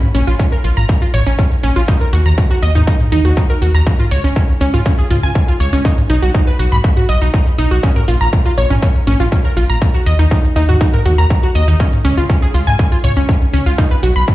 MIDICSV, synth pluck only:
0, 0, Header, 1, 2, 480
1, 0, Start_track
1, 0, Tempo, 495868
1, 1822, Time_signature, 4, 2, 24, 8
1, 13890, End_track
2, 0, Start_track
2, 0, Title_t, "Synth pluck"
2, 0, Program_c, 0, 84
2, 142, Note_on_c, 0, 61, 93
2, 197, Note_off_c, 0, 61, 0
2, 265, Note_on_c, 0, 65, 74
2, 318, Note_off_c, 0, 65, 0
2, 382, Note_on_c, 0, 61, 76
2, 437, Note_off_c, 0, 61, 0
2, 505, Note_on_c, 0, 70, 75
2, 557, Note_off_c, 0, 70, 0
2, 622, Note_on_c, 0, 65, 77
2, 677, Note_off_c, 0, 65, 0
2, 745, Note_on_c, 0, 82, 97
2, 777, Note_off_c, 0, 82, 0
2, 986, Note_on_c, 0, 65, 76
2, 1038, Note_off_c, 0, 65, 0
2, 1102, Note_on_c, 0, 73, 101
2, 1185, Note_off_c, 0, 73, 0
2, 1225, Note_on_c, 0, 61, 76
2, 1278, Note_off_c, 0, 61, 0
2, 1342, Note_on_c, 0, 61, 78
2, 1375, Note_off_c, 0, 61, 0
2, 1582, Note_on_c, 0, 61, 99
2, 1637, Note_off_c, 0, 61, 0
2, 1706, Note_on_c, 0, 65, 75
2, 1758, Note_off_c, 0, 65, 0
2, 1822, Note_on_c, 0, 63, 84
2, 1877, Note_off_c, 0, 63, 0
2, 1946, Note_on_c, 0, 70, 71
2, 1998, Note_off_c, 0, 70, 0
2, 2062, Note_on_c, 0, 66, 73
2, 2117, Note_off_c, 0, 66, 0
2, 2186, Note_on_c, 0, 82, 99
2, 2217, Note_off_c, 0, 82, 0
2, 2426, Note_on_c, 0, 66, 75
2, 2478, Note_off_c, 0, 66, 0
2, 2542, Note_on_c, 0, 75, 96
2, 2625, Note_off_c, 0, 75, 0
2, 2666, Note_on_c, 0, 63, 77
2, 2718, Note_off_c, 0, 63, 0
2, 2782, Note_on_c, 0, 63, 82
2, 2815, Note_off_c, 0, 63, 0
2, 3022, Note_on_c, 0, 63, 101
2, 3077, Note_off_c, 0, 63, 0
2, 3145, Note_on_c, 0, 66, 72
2, 3198, Note_off_c, 0, 66, 0
2, 3262, Note_on_c, 0, 63, 75
2, 3318, Note_off_c, 0, 63, 0
2, 3386, Note_on_c, 0, 70, 73
2, 3438, Note_off_c, 0, 70, 0
2, 3502, Note_on_c, 0, 66, 75
2, 3557, Note_off_c, 0, 66, 0
2, 3626, Note_on_c, 0, 82, 102
2, 3657, Note_off_c, 0, 82, 0
2, 3866, Note_on_c, 0, 65, 71
2, 3918, Note_off_c, 0, 65, 0
2, 3982, Note_on_c, 0, 73, 95
2, 4065, Note_off_c, 0, 73, 0
2, 4106, Note_on_c, 0, 61, 74
2, 4158, Note_off_c, 0, 61, 0
2, 4222, Note_on_c, 0, 61, 76
2, 4255, Note_off_c, 0, 61, 0
2, 4462, Note_on_c, 0, 61, 96
2, 4517, Note_off_c, 0, 61, 0
2, 4586, Note_on_c, 0, 65, 78
2, 4638, Note_off_c, 0, 65, 0
2, 4702, Note_on_c, 0, 61, 84
2, 4758, Note_off_c, 0, 61, 0
2, 4826, Note_on_c, 0, 68, 75
2, 4878, Note_off_c, 0, 68, 0
2, 4943, Note_on_c, 0, 65, 75
2, 4998, Note_off_c, 0, 65, 0
2, 5066, Note_on_c, 0, 80, 100
2, 5097, Note_off_c, 0, 80, 0
2, 5306, Note_on_c, 0, 65, 75
2, 5358, Note_off_c, 0, 65, 0
2, 5423, Note_on_c, 0, 73, 95
2, 5505, Note_off_c, 0, 73, 0
2, 5547, Note_on_c, 0, 61, 80
2, 5598, Note_off_c, 0, 61, 0
2, 5663, Note_on_c, 0, 63, 82
2, 5696, Note_off_c, 0, 63, 0
2, 5903, Note_on_c, 0, 63, 95
2, 5958, Note_off_c, 0, 63, 0
2, 6026, Note_on_c, 0, 66, 74
2, 6078, Note_off_c, 0, 66, 0
2, 6142, Note_on_c, 0, 63, 80
2, 6197, Note_off_c, 0, 63, 0
2, 6266, Note_on_c, 0, 71, 76
2, 6318, Note_off_c, 0, 71, 0
2, 6382, Note_on_c, 0, 66, 76
2, 6437, Note_off_c, 0, 66, 0
2, 6506, Note_on_c, 0, 83, 100
2, 6537, Note_off_c, 0, 83, 0
2, 6746, Note_on_c, 0, 66, 78
2, 6798, Note_off_c, 0, 66, 0
2, 6862, Note_on_c, 0, 75, 100
2, 6945, Note_off_c, 0, 75, 0
2, 6986, Note_on_c, 0, 63, 73
2, 7038, Note_off_c, 0, 63, 0
2, 7102, Note_on_c, 0, 63, 76
2, 7135, Note_off_c, 0, 63, 0
2, 7342, Note_on_c, 0, 63, 101
2, 7397, Note_off_c, 0, 63, 0
2, 7466, Note_on_c, 0, 66, 73
2, 7518, Note_off_c, 0, 66, 0
2, 7582, Note_on_c, 0, 61, 83
2, 7638, Note_off_c, 0, 61, 0
2, 7706, Note_on_c, 0, 70, 74
2, 7758, Note_off_c, 0, 70, 0
2, 7822, Note_on_c, 0, 65, 74
2, 7877, Note_off_c, 0, 65, 0
2, 7946, Note_on_c, 0, 82, 103
2, 7977, Note_off_c, 0, 82, 0
2, 8186, Note_on_c, 0, 65, 77
2, 8238, Note_off_c, 0, 65, 0
2, 8302, Note_on_c, 0, 73, 97
2, 8385, Note_off_c, 0, 73, 0
2, 8426, Note_on_c, 0, 61, 80
2, 8478, Note_off_c, 0, 61, 0
2, 8542, Note_on_c, 0, 61, 83
2, 8575, Note_off_c, 0, 61, 0
2, 8782, Note_on_c, 0, 61, 102
2, 8838, Note_off_c, 0, 61, 0
2, 8906, Note_on_c, 0, 65, 77
2, 8958, Note_off_c, 0, 65, 0
2, 9022, Note_on_c, 0, 61, 79
2, 9077, Note_off_c, 0, 61, 0
2, 9145, Note_on_c, 0, 70, 76
2, 9198, Note_off_c, 0, 70, 0
2, 9262, Note_on_c, 0, 65, 76
2, 9317, Note_off_c, 0, 65, 0
2, 9386, Note_on_c, 0, 82, 104
2, 9417, Note_off_c, 0, 82, 0
2, 9625, Note_on_c, 0, 66, 73
2, 9678, Note_off_c, 0, 66, 0
2, 9742, Note_on_c, 0, 75, 95
2, 9825, Note_off_c, 0, 75, 0
2, 9866, Note_on_c, 0, 63, 76
2, 9918, Note_off_c, 0, 63, 0
2, 9982, Note_on_c, 0, 63, 78
2, 10015, Note_off_c, 0, 63, 0
2, 10222, Note_on_c, 0, 63, 101
2, 10277, Note_off_c, 0, 63, 0
2, 10346, Note_on_c, 0, 66, 75
2, 10398, Note_off_c, 0, 66, 0
2, 10462, Note_on_c, 0, 63, 81
2, 10517, Note_off_c, 0, 63, 0
2, 10585, Note_on_c, 0, 70, 76
2, 10638, Note_off_c, 0, 70, 0
2, 10702, Note_on_c, 0, 66, 75
2, 10757, Note_off_c, 0, 66, 0
2, 10826, Note_on_c, 0, 82, 99
2, 10857, Note_off_c, 0, 82, 0
2, 11065, Note_on_c, 0, 66, 73
2, 11118, Note_off_c, 0, 66, 0
2, 11182, Note_on_c, 0, 75, 99
2, 11265, Note_off_c, 0, 75, 0
2, 11305, Note_on_c, 0, 63, 75
2, 11358, Note_off_c, 0, 63, 0
2, 11422, Note_on_c, 0, 61, 82
2, 11455, Note_off_c, 0, 61, 0
2, 11662, Note_on_c, 0, 61, 98
2, 11717, Note_off_c, 0, 61, 0
2, 11786, Note_on_c, 0, 65, 73
2, 11838, Note_off_c, 0, 65, 0
2, 11902, Note_on_c, 0, 61, 77
2, 11957, Note_off_c, 0, 61, 0
2, 12026, Note_on_c, 0, 68, 77
2, 12078, Note_off_c, 0, 68, 0
2, 12142, Note_on_c, 0, 65, 75
2, 12197, Note_off_c, 0, 65, 0
2, 12266, Note_on_c, 0, 80, 105
2, 12297, Note_off_c, 0, 80, 0
2, 12506, Note_on_c, 0, 65, 77
2, 12558, Note_off_c, 0, 65, 0
2, 12622, Note_on_c, 0, 73, 102
2, 12705, Note_off_c, 0, 73, 0
2, 12746, Note_on_c, 0, 61, 73
2, 12798, Note_off_c, 0, 61, 0
2, 12862, Note_on_c, 0, 61, 79
2, 12895, Note_off_c, 0, 61, 0
2, 13102, Note_on_c, 0, 61, 98
2, 13157, Note_off_c, 0, 61, 0
2, 13226, Note_on_c, 0, 65, 78
2, 13278, Note_off_c, 0, 65, 0
2, 13342, Note_on_c, 0, 63, 82
2, 13397, Note_off_c, 0, 63, 0
2, 13466, Note_on_c, 0, 71, 74
2, 13518, Note_off_c, 0, 71, 0
2, 13582, Note_on_c, 0, 66, 74
2, 13637, Note_off_c, 0, 66, 0
2, 13706, Note_on_c, 0, 83, 101
2, 13737, Note_off_c, 0, 83, 0
2, 13890, End_track
0, 0, End_of_file